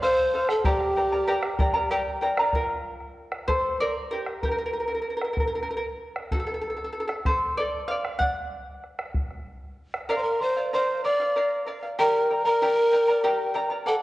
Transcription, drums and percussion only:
0.49 bombo rim
0.64 bombo rim, bombo low
0.80 bombo rim
1.43 bombo rim
1.59 bombo low
1.90 bombo rim
2.37 bombo rim
2.53 bombo low
2.69 bombo rim
3.00 bombo rim
3.32 bombo rim
3.48 bombo low
4.26 bombo rim
4.43 bombo low
4.58 bombo rim
4.89 bombo rim
5.22 bombo rim
5.37 bombo rim, bombo low
6.16 bombo rim
6.31 bombo low
6.47 bombo rim
6.78 bombo rim
7.09 bombo rim
7.25 bombo rim, bombo low
8.05 bombo rim
8.20 bombo low
8.84 bombo rim
8.99 bombo rim
9.15 bombo low
9.31 bombo rim
9.94 bombo rim

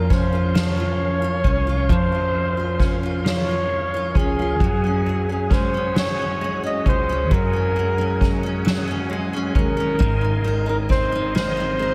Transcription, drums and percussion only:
0.09 kick, snare, ride
0.55 snare, ride
0.99 ride
1.44 kick
1.89 kick, ride
2.35 ride
2.79 kick, snare, ride
3.25 snare, ride
3.70 ride
4.15 kick, ride
4.60 kick
5.06 ride
5.50 kick, snare, ride
5.96 snare, ride
6.40 ride
6.85 kick, ride
7.31 kick, ride
7.76 ride
8.20 kick, snare, ride
8.66 snare, ride
9.10 ride
9.55 kick, ride
10.00 kick, ride
10.45 ride
10.90 kick, snare, ride
11.35 snare, ride
11.80 ride

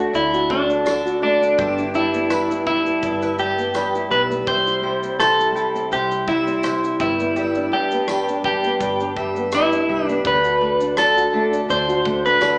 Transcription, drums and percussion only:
0.14 shaker
0.34 shaker
0.50 kick
0.70 shaker
0.86 cross-stick, tambourine, shaker
1.07 shaker
1.43 shaker
1.59 kick, shaker
1.78 shaker
1.94 shaker
2.14 shaker
2.30 cross-stick, tambourine, shaker
2.51 shaker
2.67 kick
2.86 shaker
3.03 kick, shaker
3.22 shaker
3.38 shaker
3.59 shaker
3.74 cross-stick, tambourine, shaker
3.95 shaker
4.11 cross-stick, shaker
4.31 shaker
4.47 kick, shaker
4.67 shaker
5.03 shaker
5.20 cross-stick, tambourine, shaker
5.41 shaker
5.56 shaker
5.76 shaker
5.92 shaker
6.11 shaker
6.28 kick
6.47 shaker
6.63 cross-stick, tambourine, shaker
6.84 shaker
7.00 kick, shaker
7.20 shaker
7.36 shaker
7.55 shaker
7.91 shaker
8.08 cross-stick, tambourine, shaker
8.28 shaker
8.44 kick
8.64 shaker
8.81 kick, shaker
9.00 shaker
9.17 kick
9.36 shaker
9.52 cross-stick, tambourine, shaker
9.72 shaker
10.09 shaker
10.25 kick, shaker
10.44 shaker
10.80 shaker
10.97 cross-stick, tambourine, shaker
11.18 shaker
11.53 shaker
11.70 shaker
11.89 shaker
12.05 kick
12.25 shaker
12.41 cross-stick, tambourine, shaker

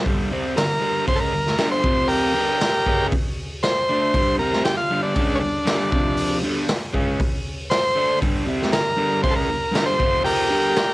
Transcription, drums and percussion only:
0.06 kick, open hi-hat
0.57 snare, open hi-hat
1.08 kick, open hi-hat
1.47 snare
1.58 snare, open hi-hat
1.84 kick
2.09 open hi-hat
2.61 snare, open hi-hat
2.86 kick
3.12 kick, open hi-hat
3.63 snare, open hi-hat
4.14 kick, open hi-hat
4.53 snare
4.65 snare, open hi-hat
5.15 kick, open hi-hat
5.67 snare, open hi-hat
5.92 kick
6.17 open hi-hat
6.68 snare, open hi-hat
6.94 kick
7.20 kick, open hi-hat
7.71 snare, open hi-hat
8.22 kick, open hi-hat
8.62 snare
8.73 snare, open hi-hat
9.24 kick, open hi-hat
9.75 snare, open hi-hat
10.00 kick
10.25 open hi-hat
10.76 snare, open hi-hat

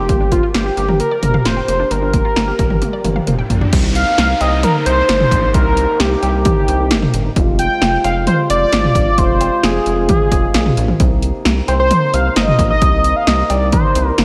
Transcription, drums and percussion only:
0.09 kick, closed hi-hat
0.32 kick, closed hi-hat
0.54 snare, closed hi-hat
0.77 closed hi-hat
0.88 mid tom
1.00 closed hi-hat
1.23 closed hi-hat, mid tom
1.34 mid tom
1.45 snare, closed hi-hat
1.68 closed hi-hat
1.91 closed hi-hat
2.14 kick, closed hi-hat
2.36 snare, closed hi-hat
2.59 kick, closed hi-hat
2.70 mid tom
2.82 closed hi-hat, high tom
3.04 closed hi-hat, mid tom
3.16 mid tom
3.27 closed hi-hat, mid tom
3.50 closed hi-hat, floor tom
3.61 floor tom
3.73 kick, closed hi-hat, crash
3.95 closed hi-hat
4.18 snare, closed hi-hat
4.41 closed hi-hat, cowbell
4.63 closed hi-hat, mid tom
4.86 closed hi-hat
5.09 snare, closed hi-hat
5.20 mid tom
5.31 kick, closed hi-hat
5.54 kick, closed hi-hat
5.77 closed hi-hat
6.00 snare, closed hi-hat
6.23 closed hi-hat, cowbell
6.45 kick, closed hi-hat, mid tom
6.68 closed hi-hat
6.91 snare, closed hi-hat
7.02 mid tom
7.14 closed hi-hat
7.36 kick, closed hi-hat
7.59 closed hi-hat
7.82 snare, closed hi-hat
8.04 closed hi-hat, cowbell
8.27 closed hi-hat, mid tom
8.50 closed hi-hat
8.72 snare, closed hi-hat
8.84 mid tom
8.95 kick, closed hi-hat
9.18 kick, closed hi-hat
9.41 closed hi-hat, cowbell
9.63 snare, closed hi-hat
9.86 closed hi-hat
10.09 kick, closed hi-hat, mid tom
10.32 kick, closed hi-hat
10.54 snare, closed hi-hat
10.66 mid tom
10.77 closed hi-hat
10.88 mid tom
11.00 kick, closed hi-hat
11.22 closed hi-hat
11.45 snare, closed hi-hat
11.68 closed hi-hat, cowbell
11.91 closed hi-hat, mid tom
12.14 closed hi-hat
12.36 snare, closed hi-hat
12.48 mid tom
12.59 kick, closed hi-hat
12.82 kick, closed hi-hat
13.04 closed hi-hat
13.27 snare, closed hi-hat
13.50 closed hi-hat, cowbell
13.72 kick, closed hi-hat, mid tom
13.95 closed hi-hat
14.18 snare, closed hi-hat

